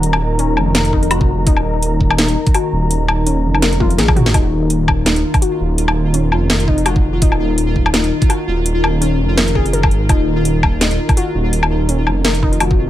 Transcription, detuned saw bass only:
Already playing: D#1
0.57 F1
1.47 D#1
2.72 D#1
3.44 F1
3.98 A#1
4.16 G#1
4.34 D#1
5.60 D#1
6.32 F1
7.22 D#1
8.48 D#1
9.20 F1
9.73 F#1
9.91 G#1
10.09 D#1
11.35 D#1
12.06 F1

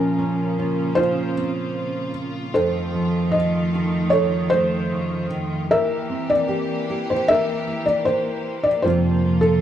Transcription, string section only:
Already playing: C#3 A#3 F4
2.55 D#3 A3
5.71 E3 A#3 G4
8.85 C3 F4

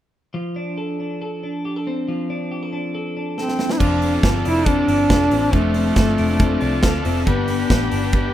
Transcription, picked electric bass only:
3.80 F1
4.23 G1
4.46 F1
4.88 G1
5.10 F1
5.32 A1
5.53 F1
5.97 G1
6.19 F1
6.62 C2
6.83 D2
7.06 F1
7.27 G1
7.70 A1
7.92 G1

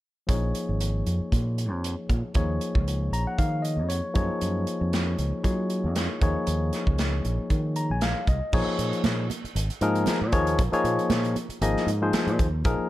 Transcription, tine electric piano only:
0.27 F3 A#3 D#4 G#4 C#5
2.34 F3 A#3 D#4 G#4 C#5
3.13 A#5
3.27 F#5
3.38 F5
3.62 D#5
3.89 C#5
4.14 F3 A#3 D#4 G#4 C#5
5.43 A#3 D#4 F4 G#4 C#5
6.21 F3 A#3 D#4 G#4 C#5
7.76 A#5
7.91 G#5
8.02 F5
8.29 D#5
8.53 F3 A#3 D#4 G#4 C#5
9.81 F3 A#3 D#4 G#4 A#4
10.32 F3 A#3 D#4 G#4 C#5
10.72 F3 A#3 D#4 G#4 C#5
11.62 F3 A#3 D#4 G#4 D#5
12.02 F3 A#3 D#4 G#4 C5
12.65 F3 A#3 D#4 G#4 A#4

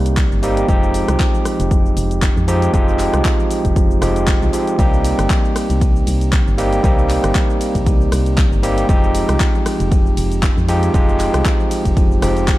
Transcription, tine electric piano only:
Already playing: G3 A#3 C4 D#4 G4
0.42 G3 A#3 C4 D#4 G4
0.68 F3 G#3 C4 D#4 G4
2.48 F3 G#3 C4 D#4 G4
2.73 F3 G#3 C4 D#4 G4
4.01 F3 G#3 C4 D#4 G4
4.53 F3 G#3 C4 D#4 G4
4.78 G3 A#3 C4 D#4 G4
6.58 G3 A#3 C4 D#4 G4
6.83 G3 A#3 C4 D#4 G4
8.63 G3 A#3 C4 D#4 G4
8.88 F3 G#3 C4 D#4 G4
10.68 F3 G#3 C4 D#4 G4
10.93 F3 G#3 C4 D#4 G4
12.22 F3 G#3 C4 D#4 G4

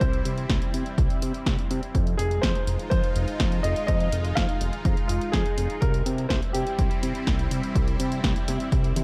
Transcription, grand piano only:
0.00 C5
2.17 G#4
2.42 C5
2.90 C5
3.63 D#5
3.87 D#5
4.35 F5
5.08 F4
5.32 G#4
5.81 A#4
6.29 C5
6.53 G4

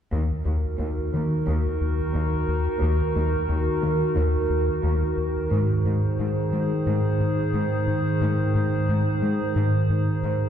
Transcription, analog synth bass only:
0.12 D#2
0.46 D#2
0.80 D#2
1.14 D#3
1.47 D#2
1.81 D#2
2.15 D#2
2.48 D#2
2.82 D#2
3.16 D#2
3.49 D#2
3.83 D#3
4.17 D#2
4.50 D#2
4.83 D#2
5.17 D#2
5.52 G#2
5.85 G#2
6.19 G#2
6.53 G#3
6.86 G#2
7.20 G#2
7.54 G#2
7.87 G#2
8.21 G#2
8.55 G#2
8.89 G#2
9.22 G#3
9.56 G#2
9.90 G#2
10.23 G#2

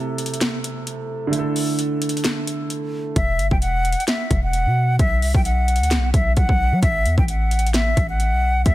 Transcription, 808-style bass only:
3.16 E1
3.39 G1
3.51 E1
4.31 E1
4.66 B2
4.99 B1
5.22 C2
5.34 B1
5.80 D2
5.97 B1
6.14 B1
6.37 B1
6.49 B1
6.72 F#3
6.83 A1
7.05 E2
7.18 A1
7.97 A1
8.32 B1
8.66 D2

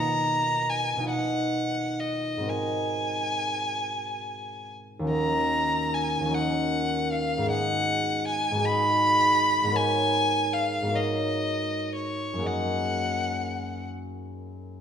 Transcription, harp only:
Already playing: B2 A#3 D#4 F4 A#4 B4 D#5
0.97 B2 D#4
1.03 F4 B4
1.08 D#5
2.37 G#2 C4
2.42 F#4 A#4
2.48 D#5
4.99 D#2 C#4
5.05 F#4 A#4
5.10 D#5
6.20 D#2 C#4
6.26 F#4 A#4
6.32 D#5
7.38 G#2 B3
7.43 F#4 G#4
7.48 D#5
8.52 G#2 B3
8.57 F#4 G#4
8.63 D#5
9.64 G#2 B3
9.69 F#4 A#4
9.74 C#5
10.82 G#2 B3
10.88 F#4 A#4
10.94 C#5
12.33 F#2 A#3
12.38 F#4 G#4
12.44 D#5

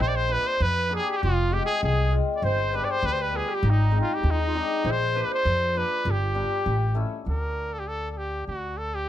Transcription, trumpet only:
0.01 C5
0.08 D5
0.15 C5
0.32 B4
0.47 C5
0.62 B4
0.95 G#4
1.11 G#4
1.17 G4
1.22 F4
1.53 G4
1.66 G#4
1.83 G#4
2.36 D5
2.44 C5
2.75 B4
2.84 D5
2.90 C5
3.05 B4
3.13 C5
3.21 B4
3.36 G#4
3.55 G4
3.70 D#4
4.01 F4
4.14 G4
4.30 D#4
4.91 C5
5.22 B4
5.34 C5
5.78 B4
6.11 G4
7.29 A#4
7.73 A4
7.79 G4
7.88 A4
8.11 A4
8.17 G4
8.47 F#4
8.78 A4
8.95 G4

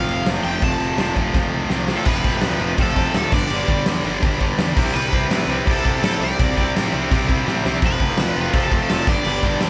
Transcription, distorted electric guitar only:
Already playing: F2 C3 F3 C4
0.28 F2 C3 F3
0.46 F2 C3 F3
0.63 F2 C3 F3
0.98 F2 C3 F3
1.17 F2 C3 F3
1.35 F2 C3 F3
1.70 F2 C3 F3
1.89 F2 C3 F3
2.06 F2 C3 F3
2.24 F2 C3 F3
2.42 F2 C3 F3
2.60 F2 C3 F3
2.76 F2 C3 F3
2.95 F2 C3 F3
3.13 F2 C3 F3
3.31 G2 D3 G3
3.50 G2 D3 G3
3.67 G2 D3 G3
3.86 G2 D3 G3
4.04 G2 D3 G3
4.22 G2 D3 G3
4.39 G2 D3 G3
4.57 G2 D3 G3
4.76 C3 G3 C4
4.95 C3 G3 C4
5.12 C3 G3 C4
5.30 C3 G3 C4
5.48 C3 G3 C4
5.66 C3 G3 C4
5.84 C3 G3 C4
6.04 C3 G3 C4
6.20 C3 G3 C4
6.40 C3 G3 C4
6.57 C3 G3 C4
6.75 C3 G3 C4
6.93 C3 G3 C4
7.12 C3 G3 C4
7.30 C3 G3 C4
7.48 C3 G3 C4
7.66 C3 G3 C4
7.84 F2 C3 F3
8.02 F2 C3 F3
8.20 F2 C3 F3
8.38 F2 C3 F3
8.55 F2 C3 F3
8.72 F2 C3 F3
8.91 F2 C3 F3
9.07 G2 D3 G3
9.25 G2 D3 G3
9.44 G2 D3 G3
9.61 G2 D3 G3

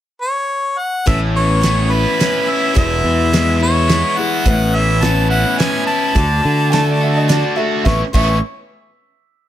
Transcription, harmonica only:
0.22 C#5
0.79 F#5
1.08 E5
1.36 C#5
1.91 B4
2.50 E5
2.78 E5
3.63 C#5
4.18 F#5
4.75 E5
5.03 A5
5.30 F#5
5.58 G#5
5.86 A5
7.86 C#6
8.13 C#6

